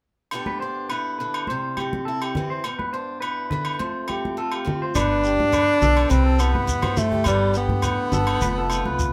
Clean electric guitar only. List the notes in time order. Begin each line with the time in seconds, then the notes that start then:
0.47 B4
0.60 C5
0.89 B4
1.19 B4
1.48 C5
1.77 G4
2.05 A4
2.21 G4
2.50 C5
2.79 B4
2.93 C5
3.20 B4
3.50 B4
3.80 C5
4.09 G4
4.38 A4
4.53 G4
4.82 C5
4.96 B4
5.24 G4
5.54 B4
5.82 A4
6.11 B4
6.25 A4
6.54 B4
6.83 C5
7.11 G4
7.26 B4
7.54 G4
7.83 B4
8.13 A4
8.42 B4
8.58 A4
8.86 B4